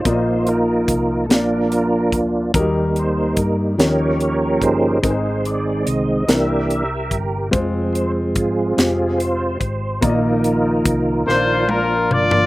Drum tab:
HH |x-x-x-x-x-x-|x-x-x-x-x-x-|x-x-x-x-x-x-|x-x-x-x-x-x-|
SD |------o-----|------o-----|------o-----|------o-----|
T1 |------------|------------|------------|------------|
T2 |------------|------------|------------|------------|
FT |------------|------------|------------|------------|
BD |o---o-----o-|o---o-----o-|o---------o-|o---o-----o-|

HH |x-x-x-------|
SD |------o-----|
T1 |--------o---|
T2 |----------o-|
FT |-----------o|
BD |o---o-------|